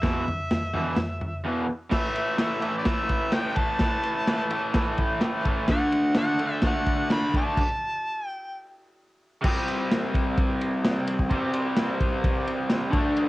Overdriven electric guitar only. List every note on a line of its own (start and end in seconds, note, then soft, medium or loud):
0.02 0.22 E2 medium
0.02 0.23 B2 loud
0.02 0.23 E3 loud
0.74 0.93 E2 loud
0.74 0.93 B2 loud
0.74 0.94 E3 loud
1.45 1.64 E2 loud
1.45 1.65 B2 loud
1.45 1.65 E3 medium
1.91 2.37 A2 medium
1.91 2.38 E3 loud
1.91 2.39 A3 loud
2.38 2.60 A2 medium
2.38 2.62 E3 medium
2.38 2.62 A3 loud
2.61 2.83 A2 loud
2.61 2.85 E3 loud
2.61 2.86 A3 loud
2.84 3.31 A2 medium
2.84 3.32 E3 loud
2.84 3.34 A3 loud
3.32 3.55 A2 loud
3.32 3.56 E3 medium
3.32 3.57 A3 loud
3.56 3.79 A2 medium
3.56 3.80 E3 medium
3.56 3.82 A3 loud
3.80 4.26 A2 loud
3.80 4.27 E3 loud
3.80 4.29 A3 loud
4.27 4.50 A2 medium
4.27 4.51 E3 loud
4.27 4.53 A3 loud
4.51 4.73 A2 loud
4.51 4.74 E3 medium
4.51 4.76 A3 loud
4.74 5.20 A2 medium
4.74 5.21 E3 loud
4.74 5.23 A3 loud
5.21 5.43 A2 loud
5.21 5.44 E3 medium
5.21 5.46 A3 loud
5.44 5.67 A2 medium
5.44 5.68 E3 medium
5.44 5.70 A3 medium
5.69 6.14 D3 loud
5.69 6.15 A3 loud
5.69 6.16 D4 loud
6.16 6.37 D3 medium
6.16 6.39 A3 loud
6.16 6.39 D4 loud
6.38 6.62 D3 medium
6.38 6.62 A3 loud
6.38 6.63 D4 loud
6.63 7.09 D3 loud
6.63 7.09 A3 loud
6.63 7.11 D4 loud
7.10 7.32 D3 medium
7.10 7.34 A3 loud
7.10 7.35 D4 loud
7.34 7.56 D3 medium
7.34 7.57 A3 medium
7.34 7.57 D4 loud
9.42 11.28 C3 medium
9.42 11.30 G3 loud
9.48 11.31 C4 loud
11.30 12.90 C3 loud
11.30 12.93 G3 loud
11.35 12.95 C4 loud
12.91 13.29 D3 medium
12.91 13.29 A3 loud
12.97 13.29 D4 loud